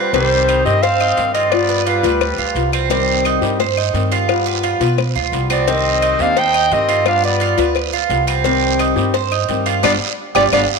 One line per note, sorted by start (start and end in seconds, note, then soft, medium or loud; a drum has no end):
0.00 0.13 G3 medium
0.00 0.13 G3 soft
0.00 0.13 B3 medium
0.00 0.13 C4 medium
0.00 0.14 F4 medium
0.00 0.13 B4 medium
0.13 0.61 C2 loud
0.13 0.64 C3 medium
0.13 0.65 D#3 medium
0.13 0.62 G3 medium
0.13 0.66 G3 medium
0.13 0.47 C4 medium
0.13 0.65 C4 medium
0.13 0.65 G4 medium
0.13 0.62 C5 loud
0.13 cowbell loud
0.13 long guiro medium
0.48 0.82 D#4 medium
0.48 cowbell medium
0.48 short guiro medium
0.48 claves medium
0.64 1.14 G2 loud
0.64 0.81 D#3 medium
0.64 0.82 G3 medium
0.64 0.82 C4 medium
0.64 0.82 G4 medium
0.64 0.84 D#5 loud
0.64 short guiro medium
0.82 1.32 C4 medium
0.82 1.00 C5 medium
0.82 1.34 F5 loud
0.82 muted nylon-string guitar stroke medium
0.82 cowbell loud
0.82 long guiro medium
1.00 1.34 D#4 medium
1.00 claves medium
1.17 1.98 G2 medium
1.17 1.51 D#3 soft
1.17 1.50 G3 medium
1.17 1.52 C4 medium
1.17 1.52 G4 medium
1.17 cowbell medium
1.17 short guiro medium
1.32 1.52 C4 medium
1.32 1.68 F4 medium
1.32 1.52 D#5 medium
1.32 cowbell medium
1.32 short guiro medium
1.50 2.06 G3 medium
1.50 1.84 B3 medium
1.50 2.03 B3 medium
1.50 2.02 F4 medium
1.50 1.86 D5 loud
1.50 cowbell loud
1.50 long guiro medium
1.50 claves medium
1.69 1.86 B4 medium
1.85 2.68 G3 medium
1.85 2.03 F4 medium
1.85 2.69 B4 medium
1.85 cowbell medium
1.85 short guiro medium
2.03 2.36 D2 medium
2.03 2.20 B3 medium
2.03 2.20 F4 medium
2.03 2.38 B4 medium
2.03 cowbell medium
2.03 short guiro medium
2.21 muted nylon-string guitar stroke medium
2.21 cowbell loud
2.21 long guiro medium
2.21 claves medium
2.38 2.54 D2 medium
2.38 2.72 F4 medium
2.55 3.36 C2 medium
2.55 2.89 G3 medium
2.55 2.90 B3 medium
2.55 2.90 F4 medium
2.55 cowbell medium
2.55 short guiro medium
2.72 2.89 C4 medium
2.72 short guiro medium
2.72 claves medium
2.89 3.41 C3 medium
2.89 3.41 D#3 medium
2.89 3.42 G3 medium
2.89 3.24 C4 medium
2.89 3.41 C4 medium
2.89 3.41 G4 medium
2.89 cowbell loud
2.89 long guiro medium
3.25 3.59 D#4 medium
3.25 cowbell medium
3.25 short guiro medium
3.25 claves medium
3.41 3.90 G2 medium
3.41 3.58 D#3 medium
3.41 3.58 G3 medium
3.41 3.59 C4 medium
3.41 3.58 G4 medium
3.41 short guiro medium
3.59 3.77 C5 medium
3.59 muted nylon-string guitar stroke medium
3.59 cowbell loud
3.59 long guiro medium
3.77 4.11 D#4 medium
3.77 claves medium
3.93 4.75 G2 medium
3.93 4.28 D#3 medium
3.93 4.27 G3 medium
3.93 4.28 C4 medium
3.93 4.29 G4 medium
3.93 cowbell medium
3.93 short guiro medium
4.11 4.45 F4 medium
4.11 cowbell medium
4.11 short guiro medium
4.28 4.83 G3 medium
4.28 4.80 B3 medium
4.28 4.79 F4 medium
4.28 cowbell loud
4.28 long guiro medium
4.28 claves medium
4.46 4.63 B4 medium
4.63 4.80 F4 medium
4.63 cowbell medium
4.63 short guiro medium
4.80 5.13 B2 loud
4.80 4.97 B3 medium
4.80 4.97 F4 medium
4.80 5.14 B4 medium
4.80 cowbell medium
4.80 short guiro medium
4.98 muted nylon-string guitar stroke medium
4.98 cowbell medium
4.98 long guiro medium
4.98 claves medium
5.15 5.31 D2 medium
5.15 5.49 F4 medium
5.32 6.13 C2 medium
5.32 5.67 G3 medium
5.32 5.67 B3 medium
5.32 5.67 F4 medium
5.32 cowbell medium
5.32 short guiro medium
5.50 5.69 B3 medium
5.50 5.67 C4 medium
5.50 5.71 D5 medium
5.50 short guiro medium
5.50 claves medium
5.67 6.19 C3 medium
5.67 6.19 D#3 medium
5.67 6.20 G3 medium
5.67 6.01 C4 medium
5.67 6.22 C4 medium
5.67 6.18 C4 medium
5.67 6.19 G4 medium
5.67 6.23 D#5 loud
5.67 cowbell loud
5.67 long guiro medium
6.02 6.36 D#4 medium
6.02 cowbell medium
6.02 short guiro medium
6.02 claves medium
6.19 6.68 D#2 loud
6.19 6.35 D#3 medium
6.19 6.36 G3 medium
6.19 6.36 C4 medium
6.19 6.39 D4 medium
6.19 6.36 G4 medium
6.19 6.40 F5 loud
6.19 short guiro medium
6.36 6.74 D#4 medium
6.36 6.54 C5 medium
6.36 6.74 G5 loud
6.36 muted nylon-string guitar stroke medium
6.36 cowbell loud
6.36 long guiro medium
6.54 6.88 D#4 medium
6.54 claves medium
6.71 7.52 G2 medium
6.71 7.05 D#3 soft
6.71 7.04 G3 soft
6.71 7.06 C4 medium
6.71 7.07 C4 medium
6.71 7.06 G4 medium
6.71 7.07 D#5 loud
6.71 cowbell medium
6.71 short guiro medium
6.89 7.22 F4 medium
6.89 cowbell medium
6.89 short guiro medium
7.05 7.60 G3 medium
7.05 7.57 B3 medium
7.05 7.23 D4 medium
7.05 7.56 F4 medium
7.05 7.23 F5 loud
7.05 cowbell loud
7.05 long guiro medium
7.05 claves medium
7.24 7.73 B3 medium
7.24 7.40 B4 medium
7.24 7.73 D5 medium
7.40 7.58 F4 medium
7.40 cowbell medium
7.40 short guiro medium
7.57 8.06 D2 loud
7.57 7.74 B3 medium
7.57 7.74 F4 medium
7.57 7.92 B4 medium
7.57 cowbell medium
7.57 short guiro medium
7.75 muted nylon-string guitar stroke medium
7.75 cowbell medium
7.75 long guiro medium
7.75 claves medium
7.93 8.27 F4 medium
8.09 8.91 C2 medium
8.09 8.44 G3 medium
8.09 8.44 B3 medium
8.09 8.45 F4 medium
8.09 cowbell medium
8.09 short guiro medium
8.27 8.44 C4 medium
8.27 short guiro medium
8.27 claves medium
8.44 8.96 C3 medium
8.44 8.96 D#3 medium
8.44 8.97 G3 medium
8.44 8.96 C4 medium
8.44 8.79 C4 medium
8.44 8.96 G4 medium
8.44 cowbell loud
8.44 long guiro medium
8.79 9.13 D#4 medium
8.79 cowbell medium
8.79 short guiro medium
8.79 claves medium
8.96 9.45 G2 loud
8.96 9.13 D#3 medium
8.96 9.13 G3 medium
8.96 9.13 C4 medium
8.96 9.13 G4 medium
8.96 short guiro medium
9.14 9.31 C5 medium
9.14 muted nylon-string guitar stroke medium
9.14 cowbell loud
9.14 long guiro medium
9.32 9.65 D#4 medium
9.32 claves medium
9.48 9.81 G2 medium
9.48 9.83 D#3 medium
9.48 9.82 G3 medium
9.48 9.83 C4 medium
9.48 9.84 G4 medium
9.48 cowbell medium
9.48 short guiro medium
9.66 9.82 F4 medium
9.66 cowbell medium
9.66 short guiro medium
9.83 9.96 G1 medium
9.83 9.94 G3 loud
9.83 9.92 B3 loud
9.83 9.94 B3 loud
9.83 9.94 D4 loud
9.83 9.94 F4 loud
9.83 9.94 G4 loud
9.83 9.93 D5 loud
9.83 cowbell loud
9.83 long guiro loud
9.83 claves loud
10.35 10.48 G1 medium
10.35 10.46 G3 medium
10.35 10.43 B3 medium
10.35 10.47 B3 medium
10.35 10.47 D4 medium
10.35 10.46 D4 medium
10.35 10.46 F4 medium
10.35 10.46 G4 medium
10.35 10.44 D5 loud
10.35 cowbell medium
10.35 long guiro loud
10.35 claves loud
10.52 10.65 G1 medium
10.52 10.64 G3 loud
10.52 10.61 B3 loud
10.52 10.64 B3 loud
10.52 10.64 D4 medium
10.52 10.64 D4 loud
10.52 10.64 F4 medium
10.52 10.64 G4 medium
10.52 10.62 D5 loud
10.52 cowbell medium
10.52 long guiro loud
10.52 claves loud